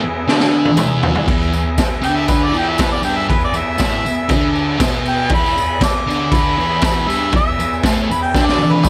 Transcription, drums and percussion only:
0.29 snare
0.40 snare
0.65 high tom
0.77 mid tom, tambourine
1.03 floor tom
1.15 floor tom
1.28 kick, crash
1.41 tambourine
1.53 tambourine
1.78 kick, snare, tambourine, crash
2.04 tambourine
2.28 kick, tambourine, crash
2.54 tambourine
2.78 kick, snare, tambourine, crash
3.03 tambourine
3.30 kick, crash
3.41 tambourine
3.54 tambourine
3.78 kick, snare, tambourine, crash
4.06 tambourine
4.29 kick, tambourine, crash
4.56 tambourine
4.80 kick, snare, tambourine, crash
5.06 tambourine
5.29 kick, crash
5.46 tambourine
5.58 tambourine
5.81 kick, snare, tambourine, crash
6.10 tambourine
6.32 kick, tambourine, crash
6.60 tambourine
6.81 kick, snare, tambourine, crash
7.10 tambourine
7.32 kick, crash
7.37 tambourine
7.60 tambourine
7.73 tambourine
7.83 kick, snare, tambourine, crash
8.11 tambourine
8.35 kick, snare, tambourine
8.49 snare, tambourine
8.58 high tom, tambourine
8.71 high tom
8.83 kick, mid tom, tambourine

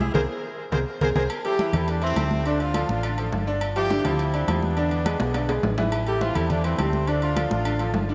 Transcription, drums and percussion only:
0.01 high conga
0.15 low conga, high timbale
0.72 low conga, high timbale
1.01 low conga, high timbale
1.16 low conga, high timbale
1.30 high conga, low agogo
1.45 high conga, low agogo
1.59 high conga, low timbale
1.73 high conga, low conga, low agogo
1.88 high conga, low agogo
2.02 high conga, low agogo
2.16 high conga, low timbale, low agogo
2.31 high conga
2.45 high conga, low agogo
2.60 high conga, low agogo
2.74 high conga, low timbale, low agogo
2.89 high conga
3.03 high conga, low agogo
3.18 high conga, low agogo
3.32 high conga, low timbale
3.61 high conga, low agogo
3.76 high conga, low agogo
3.90 high conga, low timbale
4.05 high conga, low conga, low agogo
4.19 high conga, low agogo
4.34 high conga, low agogo
4.48 high conga, low timbale, low agogo
4.62 high conga
4.77 high conga, low agogo
4.91 high conga, low agogo
5.06 high conga, low timbale, low agogo
5.20 high conga, high timbale
5.34 high conga, high timbale, low agogo
5.49 high conga, high timbale, low agogo
5.63 high conga, low timbale
5.78 high conga, low timbale
5.92 high conga, low agogo
6.07 high conga, low agogo
6.21 high conga, low timbale
6.35 high conga, low conga, low agogo
6.50 high conga, low conga, low agogo
6.64 high conga, low agogo
6.79 high conga, low timbale, low agogo
6.93 high conga
7.07 high conga, low agogo
7.22 high conga, low agogo
7.36 high conga, low timbale, low agogo
7.51 high conga
7.65 high conga, low agogo
7.79 high conga, low agogo
7.94 high conga, low timbale

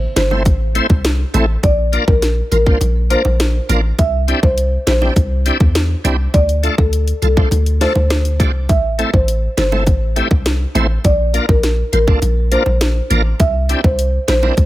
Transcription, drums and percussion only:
0.16 snare, closed hi-hat, high bongo, low bongo
0.31 high bongo
0.45 kick, closed hi-hat, high bongo
0.75 closed hi-hat
0.90 kick, high bongo
1.05 snare, closed hi-hat
1.34 closed hi-hat, low bongo
1.63 kick, closed hi-hat, high bongo
1.93 closed hi-hat
2.08 kick, high bongo
2.22 snare, closed hi-hat
2.52 closed hi-hat, high bongo, low bongo
2.66 kick, high bongo
2.81 closed hi-hat, high bongo
3.10 closed hi-hat
3.25 high bongo
3.40 snare, closed hi-hat
3.69 closed hi-hat, low bongo
3.99 kick, closed hi-hat, high bongo
4.28 closed hi-hat
4.43 kick, high bongo
4.58 closed hi-hat
4.87 snare, closed hi-hat, high bongo, low bongo
5.02 high bongo
5.16 kick, closed hi-hat, high bongo
5.46 closed hi-hat
5.60 kick, high bongo
5.75 snare, closed hi-hat
6.05 closed hi-hat, low bongo
6.34 kick, closed hi-hat, high bongo
6.49 closed hi-hat
6.64 closed hi-hat
6.78 kick, high bongo
6.93 closed hi-hat
7.08 closed hi-hat
7.22 closed hi-hat, high bongo, low bongo
7.37 kick, high bongo
7.51 closed hi-hat, high bongo
7.66 closed hi-hat
7.81 snare, closed hi-hat
7.95 high bongo
8.10 cross-stick, snare, closed hi-hat
8.25 closed hi-hat
8.40 kick, closed hi-hat, low bongo
8.69 kick, closed hi-hat, high bongo
8.99 closed hi-hat
9.14 kick, high bongo
9.28 closed hi-hat
9.57 snare, closed hi-hat, high bongo, low bongo
9.72 high bongo
9.87 kick, closed hi-hat, high bongo
10.16 closed hi-hat
10.31 kick, high bongo
10.46 snare, closed hi-hat
10.75 closed hi-hat, low bongo
11.04 kick, closed hi-hat, high bongo
11.34 closed hi-hat
11.49 kick, high bongo
11.63 snare, closed hi-hat
11.93 closed hi-hat, high bongo, low bongo
12.07 kick, high bongo
12.22 closed hi-hat, high bongo
12.52 closed hi-hat
12.66 high bongo
12.81 snare, closed hi-hat
13.10 closed hi-hat, low bongo
13.40 kick, closed hi-hat, high bongo
13.69 closed hi-hat
13.84 kick, high bongo
13.99 closed hi-hat
14.28 snare, closed hi-hat, high bongo, low bongo
14.43 high bongo
14.57 kick, closed hi-hat, high bongo

